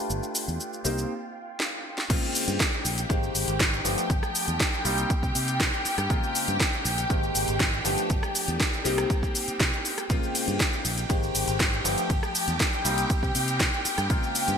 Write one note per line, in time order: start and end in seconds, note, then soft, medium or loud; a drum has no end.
0.00 0.80 A3 medium
0.00 0.80 D4 medium
0.00 0.80 F4 medium
0.00 2.11 F4 medium
0.00 0.80 G4 medium
0.00 0.81 B4 medium
0.00 2.09 G5 medium
0.10 0.20 G1 medium
0.10 shaker soft
0.23 shaker soft
0.35 open hi-hat medium
0.35 shaker medium
0.48 0.57 E2 medium
0.48 shaker soft
0.60 shaker soft
0.73 shaker soft
0.84 1.04 C2 medium
0.84 1.10 A#3 medium
0.84 1.10 C4 medium
0.84 1.10 D#4 medium
0.84 1.10 G4 medium
0.84 1.10 C5 medium
0.84 open hi-hat medium
0.84 shaker medium
0.98 shaker soft
1.60 snare loud
1.98 snare medium
2.09 2.20 A#1 loud
2.09 3.05 C#3 medium
2.09 3.05 G#3 medium
2.09 3.05 A#3 medium
2.09 3.05 C4 medium
2.09 3.06 F4 medium
2.09 10.09 G4 medium
2.09 10.09 G5 medium
2.09 kick loud
2.09 closed hi-hat medium
2.09 crash loud
2.09 shaker soft
2.23 shaker soft
2.35 open hi-hat loud
2.35 shaker medium
2.48 2.57 G2 medium
2.48 closed hi-hat medium
2.48 shaker soft
2.60 kick loud
2.60 snare loud
2.60 closed hi-hat medium
2.60 shaker soft
2.73 shaker soft
2.85 3.04 A#1 loud
2.85 open hi-hat medium
2.85 shaker medium
2.98 closed hi-hat medium
2.98 shaker soft
3.09 3.29 G#1 medium
3.09 3.80 D#3 medium
3.09 3.80 G#3 medium
3.09 3.80 A#3 medium
3.09 3.80 C4 medium
3.09 3.81 G4 medium
3.09 kick loud
3.09 closed hi-hat medium
3.09 shaker soft
3.23 shaker soft
3.35 3.45 G#1 medium
3.35 open hi-hat loud
3.35 shaker medium
3.48 3.80 G#1 medium
3.48 closed hi-hat medium
3.48 shaker soft
3.60 kick loud
3.60 snare loud
3.60 closed hi-hat medium
3.60 shaker soft
3.73 shaker soft
3.84 3.95 G1 medium
3.84 4.80 F3 medium
3.84 4.80 A3 medium
3.84 4.80 B3 medium
3.84 4.80 D4 medium
3.84 4.81 G4 medium
3.84 open hi-hat loud
3.84 shaker medium
3.98 closed hi-hat medium
3.98 shaker soft
4.10 4.20 G1 loud
4.10 kick loud
4.10 closed hi-hat medium
4.10 shaker soft
4.23 cross-stick medium
4.23 shaker soft
4.35 open hi-hat loud
4.35 shaker medium
4.48 4.57 E2 medium
4.48 closed hi-hat medium
4.48 shaker soft
4.60 kick loud
4.60 snare loud
4.60 closed hi-hat medium
4.60 shaker soft
4.73 shaker soft
4.84 5.04 C2 loud
4.84 6.05 G3 medium
4.84 6.05 A#3 medium
4.84 6.05 C4 medium
4.84 6.05 D#4 medium
4.84 6.06 G4 loud
4.84 open hi-hat medium
4.84 shaker medium
4.98 closed hi-hat medium
4.98 shaker soft
5.10 kick loud
5.10 closed hi-hat medium
5.10 shaker soft
5.23 5.32 C3 medium
5.23 kick medium
5.23 shaker soft
5.35 5.68 C3 loud
5.35 open hi-hat loud
5.35 shaker medium
5.48 closed hi-hat medium
5.48 shaker soft
5.60 kick loud
5.60 snare loud
5.60 closed hi-hat medium
5.60 shaker soft
5.73 shaker soft
5.85 muted fingered electric bass stroke soft
5.85 open hi-hat medium
5.85 shaker medium
5.98 6.07 G2 medium
5.98 cross-stick medium
5.98 closed hi-hat medium
5.98 shaker soft
6.09 6.20 A#1 loud
6.09 7.05 C#3 medium
6.09 7.05 G#3 medium
6.09 7.05 A#3 medium
6.09 7.05 C4 medium
6.09 7.06 F4 medium
6.09 kick loud
6.09 closed hi-hat medium
6.09 shaker soft
6.23 shaker soft
6.35 open hi-hat loud
6.35 shaker medium
6.48 6.57 G2 medium
6.48 closed hi-hat medium
6.48 shaker soft
6.60 kick loud
6.60 snare loud
6.60 closed hi-hat medium
6.60 shaker soft
6.73 shaker soft
6.85 7.04 A#1 loud
6.85 open hi-hat loud
6.85 shaker medium
6.98 closed hi-hat medium
6.98 shaker soft
7.09 7.29 G#1 loud
7.09 7.80 D#3 medium
7.09 7.80 G#3 medium
7.09 7.80 A#3 medium
7.09 7.80 C4 medium
7.09 7.81 G4 medium
7.09 kick loud
7.09 closed hi-hat medium
7.09 shaker soft
7.23 shaker soft
7.35 7.45 G#1 medium
7.35 open hi-hat loud
7.35 shaker medium
7.48 7.80 G#1 loud
7.48 closed hi-hat medium
7.48 shaker soft
7.60 kick loud
7.60 snare loud
7.60 closed hi-hat medium
7.60 shaker soft
7.73 shaker soft
7.84 7.95 G1 medium
7.84 8.80 F3 medium
7.84 8.80 A3 medium
7.84 8.80 B3 medium
7.84 8.80 D4 medium
7.84 8.81 G4 medium
7.84 open hi-hat loud
7.84 shaker medium
7.98 closed hi-hat medium
7.98 shaker soft
8.10 8.20 G1 loud
8.10 kick loud
8.10 closed hi-hat soft
8.10 shaker soft
8.23 cross-stick medium
8.23 shaker soft
8.35 open hi-hat loud
8.35 shaker medium
8.48 8.57 E2 medium
8.48 closed hi-hat medium
8.48 shaker soft
8.60 kick loud
8.60 snare loud
8.60 closed hi-hat medium
8.60 shaker soft
8.73 shaker soft
8.84 9.04 C2 loud
8.84 10.05 G3 medium
8.84 10.05 A#3 medium
8.84 10.05 C4 medium
8.84 10.05 D#4 medium
8.84 10.06 G4 loud
8.84 open hi-hat medium
8.84 shaker medium
8.98 cross-stick medium
8.98 closed hi-hat medium
8.98 shaker soft
9.10 kick loud
9.10 closed hi-hat medium
9.10 shaker soft
9.23 kick medium
9.23 shaker soft
9.35 open hi-hat loud
9.35 shaker medium
9.48 muted fingered electric bass stroke soft
9.48 closed hi-hat medium
9.48 shaker soft
9.60 9.70 C3 medium
9.60 kick loud
9.60 snare loud
9.60 closed hi-hat medium
9.60 shaker soft
9.73 shaker soft
9.85 open hi-hat loud
9.85 shaker medium
9.98 cross-stick medium
9.98 closed hi-hat medium
9.98 shaker soft
10.09 10.19 A#1 loud
10.09 11.05 C#3 medium
10.09 11.05 G#3 medium
10.09 11.05 A#3 medium
10.09 11.05 C4 medium
10.09 11.06 F4 medium
10.09 14.58 G4 medium
10.09 14.58 G5 medium
10.09 kick loud
10.09 closed hi-hat medium
10.09 ride medium
10.09 shaker soft
10.23 shaker soft
10.35 open hi-hat loud
10.35 ride medium
10.35 shaker medium
10.48 10.57 G2 medium
10.48 closed hi-hat medium
10.48 shaker soft
10.60 kick loud
10.60 snare loud
10.60 closed hi-hat medium
10.60 ride medium
10.60 shaker soft
10.73 shaker soft
10.85 11.04 A#1 loud
10.85 open hi-hat medium
10.85 ride medium
10.85 shaker medium
10.98 closed hi-hat medium
10.98 shaker soft
11.09 11.29 G#1 medium
11.09 11.80 D#3 medium
11.09 11.80 G#3 medium
11.09 11.80 A#3 medium
11.09 11.80 C4 medium
11.09 11.80 G4 medium
11.09 kick loud
11.09 closed hi-hat medium
11.09 ride medium
11.09 shaker soft
11.23 shaker soft
11.35 11.45 G#1 medium
11.35 open hi-hat loud
11.35 ride medium
11.35 shaker medium
11.48 11.80 G#1 loud
11.48 closed hi-hat medium
11.48 shaker soft
11.60 kick loud
11.60 snare loud
11.60 closed hi-hat medium
11.60 ride medium
11.60 shaker soft
11.73 shaker soft
11.84 11.94 G1 medium
11.84 12.80 F3 medium
11.84 12.80 A3 medium
11.84 12.80 B3 medium
11.84 12.80 D4 medium
11.84 12.81 G4 medium
11.84 open hi-hat medium
11.84 ride medium
11.84 shaker medium
11.98 closed hi-hat medium
11.98 shaker soft
12.10 12.20 G1 loud
12.10 kick loud
12.10 closed hi-hat medium
12.10 ride medium
12.10 shaker soft
12.23 cross-stick medium
12.23 shaker soft
12.35 open hi-hat loud
12.35 ride medium
12.35 shaker medium
12.48 12.57 E2 medium
12.48 closed hi-hat medium
12.48 shaker soft
12.60 kick loud
12.60 snare loud
12.60 closed hi-hat medium
12.60 ride medium
12.60 shaker soft
12.73 shaker soft
12.84 13.04 C2 loud
12.84 14.05 G3 medium
12.84 14.05 A#3 medium
12.84 14.05 C4 medium
12.84 14.05 D#4 medium
12.84 14.06 G4 loud
12.84 open hi-hat medium
12.84 ride medium
12.84 shaker medium
12.98 closed hi-hat medium
12.98 shaker soft
13.10 kick loud
13.10 closed hi-hat medium
13.10 ride medium
13.10 shaker soft
13.23 13.32 C3 medium
13.23 kick medium
13.23 shaker soft
13.35 13.68 C3 loud
13.35 open hi-hat loud
13.35 ride medium
13.35 shaker medium
13.48 closed hi-hat medium
13.48 shaker soft
13.60 kick loud
13.60 snare loud
13.60 closed hi-hat medium
13.60 ride medium
13.60 shaker soft
13.73 shaker soft
13.85 muted fingered electric bass stroke soft
13.85 open hi-hat medium
13.85 ride medium
13.85 shaker medium
13.98 14.07 G2 medium
13.98 cross-stick medium
13.98 closed hi-hat medium
13.98 shaker soft
14.09 14.20 A#1 loud
14.09 14.58 C#3 medium
14.09 14.58 G#3 medium
14.09 14.58 A#3 medium
14.09 14.58 C4 medium
14.09 14.58 F4 medium
14.09 kick loud
14.09 closed hi-hat medium
14.09 ride medium
14.09 shaker soft
14.23 shaker soft
14.35 open hi-hat loud
14.35 ride medium
14.35 shaker medium
14.48 14.57 G2 medium
14.48 closed hi-hat medium
14.48 shaker soft